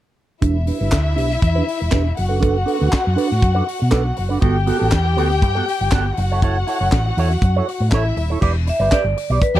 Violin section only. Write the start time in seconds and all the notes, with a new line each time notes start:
0.42 E4 E5
2.17 F#4 F#5
4.43 G4 G5
6.17 F#4 F#5
7.92 E4 E5
9.55 B3 G4 D5